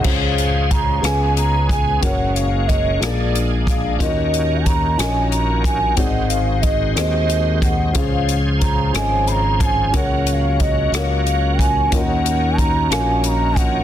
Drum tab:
CC |x-----|------|------|------|
HH |-xxxxx|xxxxxx|xxxxxx|xxxxxx|
SD |---r--|---r--|---r--|---r--|
BD |o-o--o|o-o--o|o-o--o|o-o--o|

CC |------|------|------|
HH |xxxxxx|xxxxxx|xxxxxx|
SD |---r--|---r--|---r--|
BD |o-o--o|o-o--o|o-o--o|